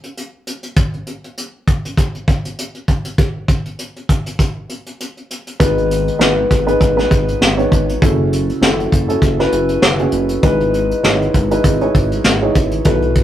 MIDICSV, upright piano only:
0, 0, Header, 1, 2, 480
1, 0, Start_track
1, 0, Key_signature, 4, "major"
1, 0, Tempo, 604839
1, 608, Time_signature, 4, 2, 24, 8
1, 10503, End_track
2, 0, Start_track
2, 0, Title_t, "Upright piano"
2, 0, Program_c, 0, 0
2, 4441, Note_on_c, 0, 63, 63
2, 4441, Note_on_c, 0, 68, 62
2, 4441, Note_on_c, 0, 71, 76
2, 4443, Note_on_c, 0, 59, 74
2, 4444, Note_on_c, 0, 44, 60
2, 4445, Note_on_c, 0, 51, 57
2, 4613, Control_c, 0, 64, 127
2, 4834, Note_off_c, 0, 63, 0
2, 4834, Note_off_c, 0, 68, 0
2, 4834, Note_off_c, 0, 71, 0
2, 4835, Note_off_c, 0, 59, 0
2, 4911, Note_on_c, 0, 63, 62
2, 4913, Note_on_c, 0, 71, 70
2, 4915, Note_on_c, 0, 59, 71
2, 4917, Note_on_c, 0, 68, 59
2, 5132, Note_off_c, 0, 44, 0
2, 5133, Note_off_c, 0, 51, 0
2, 5207, Note_off_c, 0, 63, 0
2, 5208, Note_off_c, 0, 71, 0
2, 5209, Note_off_c, 0, 59, 0
2, 5210, Note_off_c, 0, 68, 0
2, 5288, Note_on_c, 0, 63, 66
2, 5290, Note_on_c, 0, 59, 69
2, 5290, Note_on_c, 0, 68, 67
2, 5292, Note_on_c, 0, 71, 78
2, 5477, Note_off_c, 0, 59, 0
2, 5477, Note_off_c, 0, 63, 0
2, 5478, Note_off_c, 0, 68, 0
2, 5479, Note_off_c, 0, 71, 0
2, 5531, Note_on_c, 0, 59, 72
2, 5531, Note_on_c, 0, 68, 64
2, 5532, Note_on_c, 0, 71, 77
2, 5533, Note_on_c, 0, 63, 64
2, 5901, Note_off_c, 0, 59, 0
2, 5901, Note_off_c, 0, 68, 0
2, 5902, Note_off_c, 0, 71, 0
2, 5903, Note_off_c, 0, 63, 0
2, 6010, Note_on_c, 0, 63, 62
2, 6012, Note_on_c, 0, 59, 71
2, 6012, Note_on_c, 0, 68, 60
2, 6012, Note_on_c, 0, 73, 80
2, 6293, Note_off_c, 0, 63, 0
2, 6294, Note_off_c, 0, 59, 0
2, 6294, Note_off_c, 0, 68, 0
2, 6294, Note_off_c, 0, 73, 0
2, 6363, Note_on_c, 0, 49, 61
2, 6363, Note_on_c, 0, 69, 77
2, 6364, Note_on_c, 0, 66, 69
2, 6365, Note_on_c, 0, 61, 72
2, 6365, Note_on_c, 0, 64, 65
2, 6374, Control_c, 0, 64, 0
2, 6528, Control_c, 0, 64, 127
2, 6754, Note_off_c, 0, 69, 0
2, 6755, Note_off_c, 0, 61, 0
2, 6755, Note_off_c, 0, 64, 0
2, 6755, Note_off_c, 0, 66, 0
2, 6838, Note_on_c, 0, 61, 72
2, 6840, Note_on_c, 0, 64, 61
2, 6840, Note_on_c, 0, 69, 76
2, 6841, Note_on_c, 0, 66, 62
2, 7051, Note_off_c, 0, 49, 0
2, 7130, Note_off_c, 0, 61, 0
2, 7131, Note_off_c, 0, 64, 0
2, 7131, Note_off_c, 0, 69, 0
2, 7132, Note_off_c, 0, 66, 0
2, 7206, Note_on_c, 0, 64, 68
2, 7206, Note_on_c, 0, 66, 65
2, 7208, Note_on_c, 0, 69, 79
2, 7210, Note_on_c, 0, 61, 72
2, 7395, Note_off_c, 0, 64, 0
2, 7395, Note_off_c, 0, 66, 0
2, 7397, Note_off_c, 0, 61, 0
2, 7397, Note_off_c, 0, 69, 0
2, 7454, Note_on_c, 0, 61, 71
2, 7456, Note_on_c, 0, 66, 64
2, 7458, Note_on_c, 0, 64, 66
2, 7459, Note_on_c, 0, 71, 79
2, 7823, Note_off_c, 0, 61, 0
2, 7824, Note_off_c, 0, 66, 0
2, 7825, Note_off_c, 0, 64, 0
2, 7825, Note_off_c, 0, 71, 0
2, 7927, Note_on_c, 0, 66, 66
2, 7929, Note_on_c, 0, 61, 70
2, 7929, Note_on_c, 0, 64, 61
2, 7932, Note_on_c, 0, 68, 74
2, 8211, Note_off_c, 0, 66, 0
2, 8212, Note_off_c, 0, 61, 0
2, 8212, Note_off_c, 0, 64, 0
2, 8214, Note_off_c, 0, 68, 0
2, 8274, Note_on_c, 0, 68, 64
2, 8275, Note_on_c, 0, 44, 63
2, 8275, Note_on_c, 0, 64, 64
2, 8277, Note_on_c, 0, 63, 75
2, 8277, Note_on_c, 0, 71, 83
2, 8278, Note_on_c, 0, 56, 61
2, 8295, Control_c, 0, 64, 0
2, 8446, Control_c, 0, 64, 127
2, 8670, Note_off_c, 0, 68, 0
2, 8671, Note_off_c, 0, 63, 0
2, 8671, Note_off_c, 0, 64, 0
2, 8671, Note_off_c, 0, 71, 0
2, 8756, Note_on_c, 0, 73, 74
2, 8761, Note_on_c, 0, 63, 70
2, 8761, Note_on_c, 0, 64, 63
2, 8761, Note_on_c, 0, 68, 63
2, 8967, Note_off_c, 0, 44, 0
2, 8969, Note_off_c, 0, 56, 0
2, 9049, Note_off_c, 0, 73, 0
2, 9052, Note_off_c, 0, 63, 0
2, 9052, Note_off_c, 0, 64, 0
2, 9052, Note_off_c, 0, 68, 0
2, 9132, Note_on_c, 0, 64, 66
2, 9136, Note_on_c, 0, 63, 75
2, 9136, Note_on_c, 0, 68, 65
2, 9136, Note_on_c, 0, 71, 75
2, 9318, Note_off_c, 0, 64, 0
2, 9320, Note_off_c, 0, 63, 0
2, 9320, Note_off_c, 0, 68, 0
2, 9321, Note_off_c, 0, 71, 0
2, 9374, Note_on_c, 0, 68, 65
2, 9375, Note_on_c, 0, 73, 83
2, 9378, Note_on_c, 0, 63, 72
2, 9380, Note_on_c, 0, 64, 69
2, 9743, Note_off_c, 0, 68, 0
2, 9744, Note_off_c, 0, 73, 0
2, 9745, Note_off_c, 0, 63, 0
2, 9746, Note_off_c, 0, 64, 0
2, 9858, Note_on_c, 0, 63, 70
2, 9858, Note_on_c, 0, 64, 64
2, 9858, Note_on_c, 0, 73, 80
2, 9860, Note_on_c, 0, 68, 68
2, 10137, Note_off_c, 0, 63, 0
2, 10137, Note_off_c, 0, 64, 0
2, 10137, Note_off_c, 0, 73, 0
2, 10138, Note_off_c, 0, 68, 0
2, 10203, Note_on_c, 0, 47, 60
2, 10204, Note_on_c, 0, 66, 67
2, 10206, Note_on_c, 0, 54, 60
2, 10206, Note_on_c, 0, 69, 67
2, 10208, Note_on_c, 0, 71, 76
2, 10209, Note_on_c, 0, 64, 72
2, 10213, Control_c, 0, 64, 0
2, 10352, Control_c, 0, 64, 127
2, 10503, Note_off_c, 0, 47, 0
2, 10503, Note_off_c, 0, 54, 0
2, 10503, Note_off_c, 0, 64, 0
2, 10503, Note_off_c, 0, 66, 0
2, 10503, Note_off_c, 0, 69, 0
2, 10503, Note_off_c, 0, 71, 0
2, 10503, End_track
0, 0, End_of_file